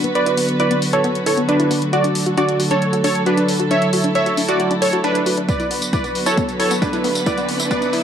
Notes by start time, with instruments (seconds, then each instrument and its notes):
Already playing: string section D3 F#3 B3 F#4 B4
0.04 synth arpeggio sound B3, closed hi-hat
0.15 supersaw synth B4 D5, closed hi-hat
0.26 synth arpeggio sound E4, closed hi-hat
0.37 synth arpeggio sound B3, open hi-hat
0.49 closed hi-hat
0.60 synth arpeggio sound E4, supersaw synth B4 D5, closed hi-hat
0.71 synth arpeggio sound B3, closed hi-hat
0.82 open hi-hat
0.93 synth arpeggio sound E4, supersaw synth A4 C#5, closed hi-hat
1.04 synth arpeggio sound B3, closed hi-hat
1.15 closed hi-hat
1.26 synth arpeggio sound E4, supersaw synth A4 C#5, open hi-hat
1.38 synth arpeggio sound B3, closed hi-hat
1.49 supersaw synth D4 B4, closed hi-hat
1.60 synth arpeggio sound E4, closed hi-hat
1.71 synth arpeggio sound B3, open hi-hat
1.82 closed hi-hat
1.93 string section A3 A4, synth arpeggio sound F#4, supersaw synth F#4 D5, closed hi-hat
2.04 synth arpeggio sound D4, closed hi-hat
2.15 open hi-hat
2.26 synth arpeggio sound F#4, closed hi-hat
2.37 synth arpeggio sound D4, supersaw synth F#4 D5, closed hi-hat
2.49 closed hi-hat
2.60 synth arpeggio sound F#4, open hi-hat
2.71 synth arpeggio sound D4, supersaw synth A4 C#5, closed hi-hat
2.82 closed hi-hat
2.93 synth arpeggio sound F#4, closed hi-hat
3.04 synth arpeggio sound D4, supersaw synth A4 C#5, open hi-hat
3.15 closed hi-hat
3.26 supersaw synth D4 B4, synth arpeggio sound F#4, closed hi-hat
3.37 synth arpeggio sound D4, closed hi-hat
3.49 open hi-hat
3.60 synth arpeggio sound F#4, closed hi-hat
3.71 synth arpeggio sound D4, string section E4, supersaw synth C#5 E5, closed hi-hat
3.82 closed hi-hat
3.93 synth arpeggio sound F#4, open hi-hat
4.04 synth arpeggio sound D4, closed hi-hat
4.15 supersaw synth C#5 E5, closed hi-hat
4.26 synth arpeggio sound F#4, closed hi-hat
4.37 synth arpeggio sound D4, open hi-hat
4.49 supersaw synth F#4 D5, closed hi-hat
4.60 synth arpeggio sound F#4, closed hi-hat
4.71 synth arpeggio sound D4, closed hi-hat
4.82 supersaw synth A4 C#5, open hi-hat
4.93 synth arpeggio sound F#4, closed hi-hat
5.04 synth arpeggio sound D4, supersaw synth D4 B4, closed hi-hat
5.15 closed hi-hat
5.26 synth arpeggio sound F#4, open hi-hat
5.37 synth arpeggio sound D4, closed hi-hat
5.49 string section D3 B3 F#4 B4, supersaw synth B4 D5, kick, closed hi-hat, tambourine, riser
5.60 synth arpeggio sound E4, closed hi-hat, tambourine
5.71 synth arpeggio sound B3, open hi-hat
5.82 closed hi-hat, tambourine
5.93 synth arpeggio sound E4, supersaw synth B4 D5, kick, closed hi-hat, tambourine
6.04 synth arpeggio sound B3, closed hi-hat, tambourine
6.15 open hi-hat
6.26 synth arpeggio sound E4, supersaw synth A4 C#5, closed hi-hat, tambourine
6.37 synth arpeggio sound B3, kick, closed hi-hat, tambourine
6.49 closed hi-hat, tambourine
6.60 synth arpeggio sound E4, supersaw synth A4 C#5, open hi-hat
6.71 synth arpeggio sound B3, closed hi-hat, tambourine
6.82 supersaw synth D4 B4, kick, closed hi-hat, tambourine
6.93 synth arpeggio sound E4, closed hi-hat, tambourine
7.04 synth arpeggio sound B3, open hi-hat
7.15 closed hi-hat, tambourine
7.26 string section E4, synth arpeggio sound E4, supersaw synth B4 D5, kick, closed hi-hat, tambourine
7.38 synth arpeggio sound B3, closed hi-hat, tambourine
7.49 open hi-hat
7.60 synth arpeggio sound E4, closed hi-hat, tambourine
7.71 synth arpeggio sound B3, supersaw synth B4 D5, kick, closed hi-hat, tambourine
7.82 closed hi-hat, tambourine
7.93 synth arpeggio sound E4, open hi-hat